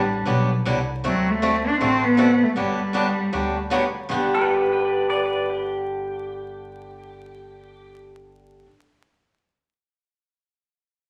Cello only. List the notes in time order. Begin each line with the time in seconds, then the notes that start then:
Already playing: G3
1.06 F#3
1.30 A3
1.68 D4
1.81 C4
2.05 B3
2.43 A3
2.57 G3